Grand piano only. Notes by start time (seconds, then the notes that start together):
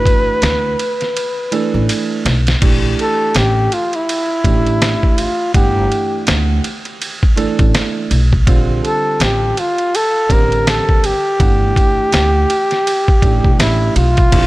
Already playing: E3 A3 D4 F#4
1.51 E3 A3 D4 A4
2.61 E3 A3 D4 G4
4.44 E3 A3 D4 G4
5.54 E3 A3 D4 F#5
7.36 E3 A3 D4 A4
8.46 D3 G3 C4 F4
10.29 D3 G3 C4 G4
11.39 E3 A3 D4 F#5
13.21 E3 A3 D4 G4
14.31 D3 G3 C4 E4
14.39 F4